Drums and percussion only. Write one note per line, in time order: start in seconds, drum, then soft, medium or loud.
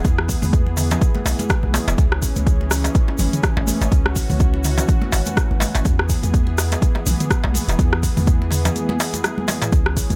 0.05 kick loud
0.05 closed hi-hat soft
0.05 muted conga medium
0.05 shaker soft
0.18 cross-stick medium
0.28 kick medium
0.28 open hi-hat medium
0.28 muted conga soft
0.28 shaker medium
0.42 open hi-hat soft
0.42 mid tom medium
0.42 high conga medium
0.42 low conga medium
0.42 shaker medium
0.53 kick loud
0.53 closed hi-hat soft
0.53 shaker soft
0.66 muted conga soft
0.77 open hi-hat medium
0.77 mid tom medium
0.77 darbuka ka medium
0.77 shaker medium
0.91 closed hi-hat medium
0.91 muted conga soft
0.91 darbuka tek medium
0.91 low conga loud
0.91 shaker medium
1.01 kick loud
1.01 closed hi-hat soft
1.01 shaker soft
1.15 muted conga soft
1.15 high conga loud
1.26 open hi-hat medium
1.26 darbuka tek loud
1.26 shaker medium
1.39 closed hi-hat medium
1.39 muted conga soft
1.39 high conga medium
1.39 shaker soft
1.49 kick loud
1.49 cross-stick loud
1.49 closed hi-hat soft
1.49 shaker soft
1.63 high conga medium
1.74 open hi-hat medium
1.74 muted conga medium
1.74 darbuka ka loud
1.74 high conga medium
1.74 darbuka tek loud
1.74 shaker loud
1.88 closed hi-hat medium
1.88 darbuka ka loud
1.88 darbuka tek medium
1.88 shaker soft
1.98 kick loud
1.98 closed hi-hat soft
1.98 muted conga soft
1.98 shaker soft
2.12 cross-stick medium
2.22 kick medium
2.22 open hi-hat medium
2.22 muted conga soft
2.22 shaker loud
2.36 closed hi-hat medium
2.36 high conga medium
2.36 shaker soft
2.47 kick loud
2.47 closed hi-hat soft
2.47 shaker soft
2.61 muted conga soft
2.71 cross-stick medium
2.71 open hi-hat medium
2.71 darbuka ka medium
2.71 shaker medium
2.84 closed hi-hat medium
2.84 muted conga soft
2.84 darbuka tek medium
2.84 shaker medium
2.95 kick loud
2.95 closed hi-hat soft
2.95 shaker soft
3.08 darbuka ka medium
3.08 muted conga soft
3.18 open hi-hat medium
3.18 high conga medium
3.18 low conga loud
3.18 shaker medium
3.33 closed hi-hat medium
3.33 mid tom medium
3.33 muted conga soft
3.33 shaker soft
3.43 kick loud
3.43 cross-stick medium
3.43 closed hi-hat soft
3.43 shaker soft
3.57 darbuka ka medium
3.57 darbuka tek loud
3.57 high conga medium
3.67 open hi-hat medium
3.67 muted conga medium
3.67 high conga loud
3.67 shaker medium
3.82 closed hi-hat medium
3.82 darbuka tek medium
3.82 shaker medium
3.92 kick loud
3.92 closed hi-hat soft
3.92 muted conga soft
3.92 shaker soft
4.06 cross-stick medium
4.16 kick medium
4.16 open hi-hat medium
4.16 muted conga soft
4.16 shaker medium
4.30 open hi-hat soft
4.30 mid tom medium
4.30 high conga medium
4.30 low conga medium
4.30 shaker medium
4.40 kick loud
4.40 closed hi-hat soft
4.40 shaker soft
4.54 muted conga medium
4.64 open hi-hat medium
4.64 mid tom medium
4.64 darbuka ka medium
4.64 shaker medium
4.78 closed hi-hat medium
4.78 muted conga soft
4.78 darbuka tek medium
4.78 low conga medium
4.78 shaker medium
4.88 kick loud
4.88 closed hi-hat soft
4.88 shaker soft
5.02 muted conga soft
5.02 high conga loud
5.12 open hi-hat medium
5.12 darbuka tek medium
5.12 shaker medium
5.26 closed hi-hat medium
5.26 muted conga soft
5.26 high conga medium
5.26 shaker medium
5.37 kick loud
5.37 cross-stick medium
5.37 closed hi-hat soft
5.37 shaker soft
5.51 high conga medium
5.60 open hi-hat medium
5.60 darbuka ka loud
5.60 muted conga soft
5.60 high conga medium
5.60 darbuka tek medium
5.60 shaker medium
5.75 closed hi-hat medium
5.75 darbuka ka loud
5.75 darbuka tek medium
5.75 shaker soft
5.85 kick loud
5.85 closed hi-hat soft
5.85 muted conga soft
5.85 shaker soft
5.99 cross-stick medium
6.09 kick medium
6.09 open hi-hat medium
6.09 muted conga soft
6.09 shaker medium
6.23 closed hi-hat medium
6.23 high conga medium
6.23 shaker soft
6.34 kick loud
6.34 closed hi-hat soft
6.34 shaker soft
6.47 muted conga medium
6.58 cross-stick medium
6.58 open hi-hat medium
6.58 darbuka ka medium
6.58 shaker medium
6.72 closed hi-hat medium
6.72 muted conga soft
6.72 darbuka tek medium
6.72 shaker soft
6.82 kick loud
6.82 closed hi-hat soft
6.82 shaker soft
6.95 darbuka ka medium
6.95 muted conga medium
7.06 open hi-hat medium
7.06 high conga medium
7.06 low conga loud
7.06 shaker medium
7.20 closed hi-hat medium
7.20 mid tom medium
7.20 muted conga soft
7.20 shaker medium
7.30 kick loud
7.30 cross-stick medium
7.30 closed hi-hat soft
7.30 shaker soft
7.44 darbuka ka medium
7.44 darbuka tek medium
7.44 high conga medium
7.54 open hi-hat medium
7.54 muted conga soft
7.54 high conga medium
7.54 shaker medium
7.69 closed hi-hat medium
7.69 darbuka tek medium
7.69 shaker soft
7.79 kick loud
7.79 closed hi-hat soft
7.79 muted conga medium
7.79 shaker soft
7.93 cross-stick medium
8.03 kick medium
8.03 open hi-hat medium
8.03 muted conga soft
8.03 shaker medium
8.17 open hi-hat medium
8.17 mid tom medium
8.17 high conga loud
8.17 low conga medium
8.17 shaker medium
8.27 kick loud
8.27 closed hi-hat soft
8.27 shaker soft
8.42 muted conga medium
8.51 open hi-hat medium
8.51 mid tom medium
8.51 darbuka ka medium
8.51 shaker medium
8.65 closed hi-hat medium
8.65 muted conga soft
8.65 darbuka tek medium
8.65 low conga loud
8.65 shaker soft
8.76 closed hi-hat soft
8.76 high conga medium
8.76 shaker soft
8.89 muted conga soft
8.89 high conga loud
9.00 open hi-hat medium
9.00 darbuka tek medium
9.00 shaker medium
9.14 closed hi-hat medium
9.14 muted conga soft
9.14 high conga medium
9.14 shaker medium
9.24 cross-stick medium
9.24 closed hi-hat soft
9.24 high tom medium
9.24 darbuka tek medium
9.24 shaker soft
9.38 high tom medium
9.38 high conga medium
9.48 open hi-hat medium
9.48 darbuka ka loud
9.48 muted conga medium
9.48 darbuka tek loud
9.48 high conga medium
9.48 shaker medium
9.62 closed hi-hat medium
9.62 mid tom medium
9.62 darbuka ka loud
9.62 darbuka tek medium
9.62 shaker medium
9.72 kick loud
9.72 closed hi-hat soft
9.72 muted conga soft
9.72 shaker soft
9.86 cross-stick medium
9.97 kick medium
9.97 open hi-hat loud
9.97 muted conga soft
9.97 shaker medium
10.10 closed hi-hat medium
10.10 high conga medium
10.10 shaker medium